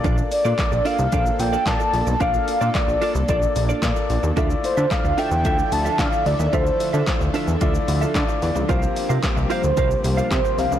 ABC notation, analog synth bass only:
X:1
M:4/4
L:1/16
Q:1/4=111
K:Bblyd
V:1 name="Analog synth bass" clef=bass
B,,,2 z B,, z B,,, z C,, B,,,2 B,,,2 B,, z B,,, =B,,, | B,,,2 z B,, z B,,, z C,, B,,,2 B,,,2 B,, z B,,, _E,, | D,,2 z D, z D,, z E,, D,,2 D,,2 D, z D,, _E,, | D,,2 z D, z D,, z E,, D,,2 D,,2 D, z E,, _D,, |
C,,2 z C, z C,, z D,, C,,2 C,,2 C, z C,, _D,, |]